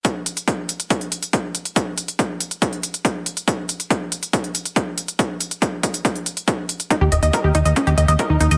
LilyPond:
<<
  \new Staff \with { instrumentName = "Synth arpeggio sound" } { \time 4/4 \key ees \dorian \tempo 4 = 140 r1 | r1 | r1 | r1 |
ees'16 g'16 ees''16 ees''16 bes'16 g'16 ees'16 ees''16 des'16 g'16 ees''16 ees''16 bes'16 ees'16 ees'16 ees''16 | }
  \new Staff \with { instrumentName = "Analog synth bass" } { \clef bass \time 4/4 \key ees \dorian r1 | r1 | r1 | r1 |
r16 ees,16 ees,,16 ees,16 r16 ees,16 ees,16 ees,16 r16 ees,16 ees,16 ees,16 r16 ees,16 ees,16 ees,16 | }
  \new DrumStaff \with { instrumentName = "Drums" } \drummode { \time 4/4 <hh bd>8 hh16 hh16 <hh bd>8 hh16 hh16 <hh bd>16 hh16 hh16 hh16 <hh bd>8 hh16 hh16 | <hh bd>8 hh16 hh16 <hh bd>8 hh16 hh16 <hh bd>16 hh16 hh16 hh16 <hh bd>8 hh16 hh16 | <hh bd>8 hh16 hh16 <hh bd>8 hh16 hh16 <hh bd>16 hh16 hh16 hh16 <hh bd>8 hh16 hh16 | <hh bd>8 hh16 hh16 <hh bd>8 <hh bd>16 hh16 <hh bd>16 hh16 hh16 hh16 <hh bd>8 hh16 hh16 |
<hh bd>8 hh16 hh16 <hh bd>8 hh16 hh16 <hh bd>16 hh16 hh16 hh16 <hh bd>8 hh16 hh16 | }
>>